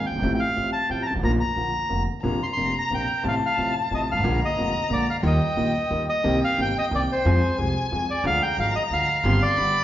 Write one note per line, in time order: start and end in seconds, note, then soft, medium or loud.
0.06 0.33 G5 medium
0.11 0.14 F#1 soft
0.11 0.15 F#1 soft
0.11 0.18 G1 medium
0.16 0.20 G1 medium
0.16 0.22 G#1 medium
0.16 0.23 G#1 medium
0.23 0.37 A1 loud
0.23 0.37 A1 medium
0.23 0.37 A2 medium
0.23 0.37 F3 medium
0.23 0.37 A3 medium
0.23 0.37 C4 medium
0.23 0.37 G4 medium
0.34 0.40 G5 medium
0.40 0.70 F5 loud
0.56 0.70 A1 medium
0.56 0.70 A2 medium
0.56 0.70 F3 soft
0.56 0.70 A3 soft
0.56 0.70 C4 soft
0.56 0.70 G4 medium
0.73 0.90 A5 loud
0.89 1.03 A1 medium
0.89 1.04 A1 medium
0.89 1.03 A2 medium
0.89 1.03 F3 soft
0.89 1.03 A3 soft
0.89 1.04 C4 soft
0.89 1.03 G4 soft
0.89 1.03 G5 medium
1.03 1.14 A5 medium
1.03 1.06 A#5 medium
1.11 1.15 G1 medium
1.11 1.19 G#1 medium
1.15 1.18 G#1 medium
1.15 1.23 A1 medium
1.23 1.37 A#1 medium
1.23 1.37 A#1 loud
1.23 1.37 A#2 medium
1.23 1.37 D#3 medium
1.23 1.37 F3 medium
1.23 1.37 A#3 medium
1.23 1.37 F4 medium
1.23 1.32 A#5 loud
1.40 2.03 A#5 loud
1.56 1.70 A#1 medium
1.56 1.70 A#2 medium
1.56 1.70 D3 soft
1.56 1.70 F3 soft
1.56 1.70 A#3 soft
1.56 1.71 F4 medium
1.89 2.04 F1 medium
1.89 2.04 F2 medium
1.89 2.04 D3 soft
1.89 2.04 F3 soft
1.89 2.04 A#3 soft
1.89 2.04 F4 soft
2.22 2.38 A#1 medium
2.22 2.38 A#2 medium
2.22 2.37 C3 medium
2.22 2.38 F3 medium
2.22 2.38 A#3 medium
2.22 2.38 D4 medium
2.22 3.26 A#5 loud
2.43 2.46 C6 loud
2.53 2.71 C3 soft
2.53 2.75 C6 loud
2.57 2.72 F1 medium
2.57 2.71 F2 medium
2.57 2.71 F3 soft
2.57 2.71 A#3 soft
2.57 2.72 D4 soft
2.79 2.92 A#5 loud
2.90 3.05 A#1 medium
2.90 3.05 A#2 medium
2.90 3.05 C3 soft
2.90 3.05 F3 soft
2.90 3.05 A#3 soft
2.90 3.05 D4 medium
2.90 3.24 G5 medium
3.23 3.38 A1 medium
3.23 3.38 A2 medium
3.23 3.38 C3 medium
3.23 3.38 F3 medium
3.23 3.38 A3 medium
3.23 3.38 F4 medium
3.23 4.26 A5 loud
3.28 3.35 F5 medium
3.46 3.75 F5 loud
3.57 3.71 A1 medium
3.57 3.72 A1 medium
3.57 3.72 A2 medium
3.57 3.72 C3 medium
3.57 3.72 F3 soft
3.57 3.72 A3 soft
3.57 3.72 F4 medium
3.91 4.05 A1 medium
3.91 4.05 A2 medium
3.91 4.05 C3 medium
3.91 4.05 F3 soft
3.91 4.05 A3 soft
3.91 4.05 F4 medium
3.91 4.01 D#5 medium
4.11 4.15 G1 medium
4.11 4.16 G1 medium
4.11 4.40 F5 loud
4.16 4.19 G#1 medium
4.16 4.20 G#1 medium
4.16 4.23 A1 medium
4.16 4.24 A1 medium
4.23 4.38 A#1 loud
4.23 4.38 A#2 medium
4.23 4.38 D3 medium
4.23 4.38 G#3 medium
4.23 4.38 A#3 medium
4.23 4.38 F4 medium
4.23 5.23 A#5 loud
4.45 4.89 D#5 loud
4.57 4.71 F1 medium
4.57 4.71 F2 medium
4.57 4.71 D3 medium
4.57 4.71 G#3 soft
4.57 4.71 A#3 soft
4.57 4.71 F4 medium
4.90 5.04 A#1 medium
4.90 5.04 A#2 medium
4.90 5.04 D3 medium
4.90 5.04 G#3 soft
4.90 5.04 A#3 medium
4.90 5.04 F4 medium
4.90 5.07 D5 medium
5.10 5.17 F5 medium
5.23 5.37 D#2 loud
5.23 5.37 D#3 loud
5.23 5.37 G3 medium
5.23 5.37 A#3 medium
5.23 5.37 F4 medium
5.23 6.04 G5 medium
5.27 6.06 D#5 medium
5.56 5.71 A#1 medium
5.56 5.71 A#2 medium
5.56 5.71 D#3 medium
5.56 5.71 G3 soft
5.56 5.71 A#3 medium
5.56 5.71 F4 medium
5.90 6.05 D#2 medium
5.90 6.05 D#3 medium
5.90 6.05 G3 medium
5.90 6.05 A#3 soft
5.90 6.05 F4 medium
6.09 6.40 D#5 loud
6.24 6.38 C2 loud
6.24 6.39 C2 medium
6.24 6.39 C3 medium
6.24 6.38 D#3 medium
6.24 6.38 A#3 medium
6.24 6.39 C4 medium
6.24 6.39 G4 medium
6.24 7.27 G5 medium
6.44 6.60 F5 loud
6.58 6.72 G1 medium
6.58 6.72 G2 medium
6.58 6.72 D#3 medium
6.58 6.72 A#3 soft
6.58 6.72 C4 soft
6.58 6.73 G4 medium
6.58 6.77 G5 loud
6.78 6.85 D#5 loud
6.91 7.06 C2 medium
6.91 7.06 C3 medium
6.91 7.05 D#3 medium
6.91 7.06 A#3 soft
6.91 7.06 C4 soft
6.91 7.06 G4 medium
6.95 7.02 D5 medium
7.12 7.57 C5 medium
7.25 7.39 F2 loud
7.25 7.39 F2 medium
7.25 7.39 F3 medium
7.25 7.39 G#3 medium
7.25 7.40 C4 medium
7.25 7.40 G#4 medium
7.25 8.26 G#5 loud
7.58 7.72 C2 medium
7.58 7.72 C3 medium
7.58 7.72 F3 medium
7.58 7.72 G#3 soft
7.58 7.72 C4 soft
7.58 7.73 G#4 medium
7.92 8.05 F2 medium
7.92 8.06 F2 medium
7.92 8.06 F3 medium
7.92 8.06 G#3 soft
7.92 8.06 C4 soft
7.92 8.06 G#4 medium
8.11 8.25 D5 medium
8.24 8.38 D2 loud
8.24 8.39 D2 medium
8.24 8.39 D3 medium
8.24 8.38 F3 medium
8.24 8.39 G#3 medium
8.24 8.39 D4 medium
8.24 8.39 G#4 medium
8.24 8.42 F5 loud
8.24 9.26 A#5 loud
8.43 8.57 G5 loud
8.57 8.71 G#1 medium
8.57 8.72 G#1 medium
8.57 8.72 G#2 medium
8.57 8.72 F3 medium
8.57 8.72 G#3 soft
8.57 8.72 D4 soft
8.57 8.72 G#4 medium
8.57 8.74 F5 loud
8.76 8.83 D#5 loud
8.90 9.05 D2 medium
8.90 9.05 D3 medium
8.90 9.05 F3 medium
8.90 9.05 G#3 soft
8.90 9.06 D4 soft
8.90 9.05 G#4 medium
8.90 9.43 F5 loud
9.24 9.38 G1 loud
9.24 9.39 G1 loud
9.24 9.39 G2 medium
9.24 9.39 D#3 medium
9.24 9.39 G3 medium
9.24 9.39 C4 medium
9.24 9.39 G4 medium
9.24 9.59 C6 loud
9.43 9.84 D5 loud
9.57 9.71 G1 medium
9.57 9.72 G1 medium
9.57 9.72 G2 medium
9.57 9.72 D3 medium
9.57 9.72 G3 soft
9.57 9.72 B3 soft
9.57 9.72 G4 medium
9.57 9.84 B5 loud